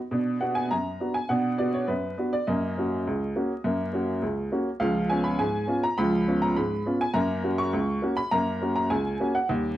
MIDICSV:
0, 0, Header, 1, 2, 480
1, 0, Start_track
1, 0, Key_signature, 6, "major"
1, 0, Tempo, 585938
1, 93, Time_signature, 2, 2, 24, 8
1, 8004, End_track
2, 0, Start_track
2, 0, Title_t, "Upright piano"
2, 0, Program_c, 0, 0
2, 92, Note_on_c, 0, 47, 74
2, 108, Note_on_c, 0, 62, 48
2, 236, Note_off_c, 0, 62, 0
2, 263, Control_c, 0, 64, 127
2, 297, Note_off_c, 0, 47, 0
2, 333, Note_on_c, 0, 78, 69
2, 335, Note_on_c, 0, 59, 41
2, 340, Note_on_c, 0, 62, 44
2, 342, Note_on_c, 0, 66, 46
2, 452, Note_on_c, 0, 80, 79
2, 453, Note_off_c, 0, 78, 0
2, 467, Note_off_c, 0, 59, 0
2, 470, Note_off_c, 0, 62, 0
2, 472, Note_off_c, 0, 66, 0
2, 573, Note_off_c, 0, 80, 0
2, 580, Note_on_c, 0, 82, 75
2, 584, Control_c, 0, 64, 0
2, 587, Note_on_c, 0, 42, 56
2, 786, Note_off_c, 0, 42, 0
2, 823, Note_on_c, 0, 59, 40
2, 824, Note_on_c, 0, 62, 44
2, 828, Note_on_c, 0, 66, 48
2, 936, Note_on_c, 0, 80, 75
2, 938, Note_off_c, 0, 82, 0
2, 953, Note_off_c, 0, 59, 0
2, 954, Note_off_c, 0, 62, 0
2, 956, Note_off_c, 0, 66, 0
2, 1055, Note_off_c, 0, 80, 0
2, 1057, Note_on_c, 0, 78, 76
2, 1062, Note_on_c, 0, 47, 78
2, 1077, Note_on_c, 0, 62, 52
2, 1203, Note_off_c, 0, 62, 0
2, 1209, Control_c, 0, 64, 127
2, 1263, Note_off_c, 0, 47, 0
2, 1296, Note_off_c, 0, 78, 0
2, 1296, Note_on_c, 0, 74, 73
2, 1302, Note_on_c, 0, 59, 47
2, 1305, Note_on_c, 0, 62, 41
2, 1306, Note_on_c, 0, 66, 50
2, 1416, Note_off_c, 0, 74, 0
2, 1424, Note_on_c, 0, 73, 71
2, 1432, Note_off_c, 0, 59, 0
2, 1434, Note_off_c, 0, 62, 0
2, 1435, Note_off_c, 0, 66, 0
2, 1537, Note_on_c, 0, 71, 66
2, 1539, Note_off_c, 0, 73, 0
2, 1541, Control_c, 0, 64, 0
2, 1541, Note_on_c, 0, 42, 58
2, 1743, Note_off_c, 0, 42, 0
2, 1784, Note_on_c, 0, 59, 51
2, 1787, Note_on_c, 0, 62, 41
2, 1795, Note_on_c, 0, 66, 48
2, 1896, Note_off_c, 0, 71, 0
2, 1907, Note_on_c, 0, 74, 75
2, 1914, Note_off_c, 0, 59, 0
2, 1916, Note_off_c, 0, 62, 0
2, 1922, Note_off_c, 0, 66, 0
2, 2022, Note_off_c, 0, 74, 0
2, 2025, Note_on_c, 0, 75, 73
2, 2030, Note_on_c, 0, 42, 83
2, 2045, Note_on_c, 0, 58, 55
2, 2167, Control_c, 0, 64, 127
2, 2170, Note_off_c, 0, 58, 0
2, 2229, Note_off_c, 0, 42, 0
2, 2276, Note_on_c, 0, 61, 40
2, 2277, Note_on_c, 0, 58, 48
2, 2285, Note_on_c, 0, 66, 47
2, 2403, Note_off_c, 0, 61, 0
2, 2404, Note_off_c, 0, 58, 0
2, 2410, Note_off_c, 0, 66, 0
2, 2503, Control_c, 0, 64, 0
2, 2516, Note_on_c, 0, 37, 65
2, 2712, Note_off_c, 0, 37, 0
2, 2751, Note_on_c, 0, 58, 47
2, 2753, Note_on_c, 0, 61, 50
2, 2756, Note_on_c, 0, 66, 50
2, 2879, Note_off_c, 0, 58, 0
2, 2880, Note_off_c, 0, 61, 0
2, 2883, Note_off_c, 0, 66, 0
2, 2984, Note_on_c, 0, 42, 81
2, 3001, Note_on_c, 0, 58, 52
2, 3126, Note_off_c, 0, 58, 0
2, 3133, Control_c, 0, 64, 127
2, 3184, Note_off_c, 0, 42, 0
2, 3221, Note_on_c, 0, 58, 40
2, 3225, Note_on_c, 0, 61, 48
2, 3231, Note_on_c, 0, 66, 53
2, 3351, Note_off_c, 0, 58, 0
2, 3354, Note_off_c, 0, 61, 0
2, 3358, Note_off_c, 0, 66, 0
2, 3457, Note_on_c, 0, 37, 62
2, 3465, Control_c, 0, 64, 0
2, 3660, Note_off_c, 0, 37, 0
2, 3699, Note_off_c, 0, 75, 0
2, 3702, Note_on_c, 0, 58, 47
2, 3704, Note_on_c, 0, 61, 55
2, 3707, Note_on_c, 0, 66, 53
2, 3832, Note_off_c, 0, 58, 0
2, 3833, Note_off_c, 0, 61, 0
2, 3835, Note_off_c, 0, 66, 0
2, 3930, Note_on_c, 0, 77, 83
2, 3932, Note_on_c, 0, 37, 84
2, 3949, Note_on_c, 0, 53, 55
2, 4073, Control_c, 0, 64, 127
2, 4077, Note_off_c, 0, 53, 0
2, 4137, Note_off_c, 0, 37, 0
2, 4172, Note_off_c, 0, 77, 0
2, 4174, Note_on_c, 0, 80, 75
2, 4177, Note_on_c, 0, 59, 43
2, 4183, Note_on_c, 0, 61, 50
2, 4187, Note_on_c, 0, 65, 46
2, 4290, Note_on_c, 0, 83, 81
2, 4293, Note_off_c, 0, 80, 0
2, 4308, Note_off_c, 0, 59, 0
2, 4312, Note_off_c, 0, 61, 0
2, 4315, Note_off_c, 0, 65, 0
2, 4411, Note_off_c, 0, 83, 0
2, 4414, Note_on_c, 0, 80, 77
2, 4419, Note_on_c, 0, 44, 67
2, 4422, Control_c, 0, 64, 0
2, 4620, Note_off_c, 0, 44, 0
2, 4646, Note_on_c, 0, 59, 46
2, 4650, Note_on_c, 0, 61, 46
2, 4656, Note_on_c, 0, 65, 60
2, 4773, Note_off_c, 0, 80, 0
2, 4779, Note_off_c, 0, 59, 0
2, 4780, Note_on_c, 0, 82, 91
2, 4783, Note_off_c, 0, 61, 0
2, 4787, Note_off_c, 0, 65, 0
2, 4896, Note_off_c, 0, 82, 0
2, 4896, Note_on_c, 0, 83, 92
2, 4901, Note_on_c, 0, 37, 91
2, 4919, Note_on_c, 0, 53, 59
2, 5043, Note_off_c, 0, 53, 0
2, 5063, Control_c, 0, 64, 127
2, 5101, Note_off_c, 0, 37, 0
2, 5141, Note_on_c, 0, 59, 48
2, 5142, Note_on_c, 0, 61, 49
2, 5148, Note_on_c, 0, 65, 56
2, 5254, Note_off_c, 0, 83, 0
2, 5258, Note_on_c, 0, 82, 84
2, 5270, Note_off_c, 0, 59, 0
2, 5271, Note_off_c, 0, 61, 0
2, 5275, Note_off_c, 0, 65, 0
2, 5374, Note_off_c, 0, 82, 0
2, 5378, Note_on_c, 0, 83, 73
2, 5380, Note_on_c, 0, 44, 65
2, 5382, Control_c, 0, 64, 0
2, 5580, Note_off_c, 0, 44, 0
2, 5620, Note_on_c, 0, 59, 53
2, 5624, Note_on_c, 0, 65, 53
2, 5625, Note_on_c, 0, 61, 52
2, 5733, Note_off_c, 0, 83, 0
2, 5742, Note_on_c, 0, 80, 86
2, 5749, Note_off_c, 0, 59, 0
2, 5752, Note_off_c, 0, 65, 0
2, 5753, Note_off_c, 0, 61, 0
2, 5846, Note_on_c, 0, 82, 94
2, 5849, Note_on_c, 0, 42, 97
2, 5856, Note_off_c, 0, 80, 0
2, 5866, Note_on_c, 0, 58, 67
2, 5992, Control_c, 0, 64, 127
2, 5993, Note_off_c, 0, 58, 0
2, 6053, Note_off_c, 0, 42, 0
2, 6091, Note_on_c, 0, 58, 46
2, 6095, Note_on_c, 0, 66, 57
2, 6096, Note_on_c, 0, 61, 44
2, 6207, Note_off_c, 0, 82, 0
2, 6212, Note_on_c, 0, 85, 90
2, 6222, Note_off_c, 0, 58, 0
2, 6225, Note_off_c, 0, 66, 0
2, 6226, Note_off_c, 0, 61, 0
2, 6333, Note_on_c, 0, 37, 72
2, 6338, Control_c, 0, 64, 0
2, 6534, Note_off_c, 0, 37, 0
2, 6571, Note_on_c, 0, 58, 51
2, 6575, Note_on_c, 0, 61, 50
2, 6580, Note_on_c, 0, 66, 61
2, 6689, Note_off_c, 0, 85, 0
2, 6690, Note_on_c, 0, 83, 102
2, 6702, Note_off_c, 0, 58, 0
2, 6705, Note_off_c, 0, 61, 0
2, 6709, Note_off_c, 0, 66, 0
2, 6809, Note_off_c, 0, 83, 0
2, 6811, Note_on_c, 0, 82, 102
2, 6816, Note_on_c, 0, 42, 82
2, 6831, Note_on_c, 0, 58, 57
2, 6957, Note_off_c, 0, 58, 0
2, 6964, Control_c, 0, 64, 127
2, 7017, Note_off_c, 0, 42, 0
2, 7056, Note_on_c, 0, 58, 44
2, 7059, Note_on_c, 0, 61, 49
2, 7063, Note_on_c, 0, 66, 50
2, 7160, Note_off_c, 0, 82, 0
2, 7173, Note_on_c, 0, 82, 83
2, 7186, Note_off_c, 0, 58, 0
2, 7188, Note_off_c, 0, 61, 0
2, 7191, Note_off_c, 0, 66, 0
2, 7291, Note_off_c, 0, 82, 0
2, 7291, Note_on_c, 0, 80, 76
2, 7293, Note_on_c, 0, 37, 72
2, 7299, Control_c, 0, 64, 0
2, 7495, Note_off_c, 0, 37, 0
2, 7538, Note_on_c, 0, 58, 53
2, 7540, Note_on_c, 0, 61, 57
2, 7542, Note_on_c, 0, 66, 54
2, 7651, Note_off_c, 0, 80, 0
2, 7658, Note_on_c, 0, 78, 80
2, 7668, Note_off_c, 0, 58, 0
2, 7670, Note_off_c, 0, 61, 0
2, 7670, Note_off_c, 0, 66, 0
2, 7774, Note_off_c, 0, 78, 0
2, 7777, Note_on_c, 0, 39, 92
2, 7793, Note_on_c, 0, 55, 57
2, 7918, Note_off_c, 0, 55, 0
2, 7930, Control_c, 0, 64, 127
2, 7978, Note_off_c, 0, 39, 0
2, 8004, End_track
0, 0, End_of_file